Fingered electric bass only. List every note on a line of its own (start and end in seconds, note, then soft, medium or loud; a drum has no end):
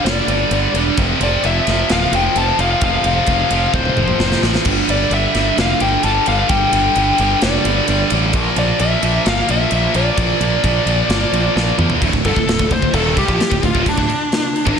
0.05 0.20 F1 medium
0.27 0.43 G1 medium
0.51 0.66 G1 loud
0.74 0.89 E1 loud
0.98 1.13 F1 loud
1.20 1.35 F1 medium
1.44 1.59 F1 medium
1.67 1.82 F1 medium
1.90 2.05 D1 loud
2.12 2.27 F1 medium
2.36 2.50 F1 medium
2.58 2.73 F1 medium
2.82 2.96 F1 medium
3.04 3.19 F1 medium
3.28 3.42 F1 medium
3.51 3.65 F1 medium
3.73 3.88 D1 medium
3.97 4.12 F1 medium
4.19 4.34 F1 loud
4.43 4.57 A1 loud
4.65 4.80 G1 loud
4.88 5.03 G1 medium
5.10 5.26 G1 medium
5.35 5.49 G1 medium
5.58 5.73 F1 loud
5.81 5.95 G1 medium
6.04 6.18 G1 loud
6.27 6.42 G1 loud
6.50 6.64 G1 loud
6.72 6.87 G1 medium
6.96 7.11 G1 medium
7.19 7.34 G1 medium
7.42 7.57 F1 loud
7.65 7.79 G1 medium
7.88 8.03 G1 loud
8.12 8.34 A1 loud
8.34 8.49 A#1 loud
8.56 8.71 A#1 medium
8.80 8.95 A#1 loud
9.03 9.17 A#1 medium
9.26 9.41 G1 loud
9.49 9.64 A#1 medium
9.72 9.86 A#1 loud
9.95 10.09 A#1 loud
10.18 10.32 A#1 medium
10.40 10.55 A#1 medium
10.64 10.79 A#1 medium
10.86 11.01 A#1 medium
11.09 11.24 G1 loud
11.32 11.47 A#1 medium
11.56 11.71 A#1 medium
11.78 11.93 E2 loud
12.02 12.12 D1 loud
12.13 12.24 D1 medium
12.25 12.36 G1 loud
12.36 12.47 D1 medium
12.47 12.58 D1 medium
12.60 12.70 D1 medium
12.70 12.81 D1 medium
12.82 12.93 D1 medium
12.93 13.15 D#1 loud
13.17 13.28 C2 loud
13.28 13.39 A#1 loud
13.41 muted fingered electric bass stroke soft
13.52 13.62 D1 medium
13.63 13.74 D1 medium
13.75 13.85 D1 medium
13.86 13.97 D1 medium
13.98 14.08 D1 medium
14.10 muted fingered electric bass stroke soft
14.67 14.77 G#1 loud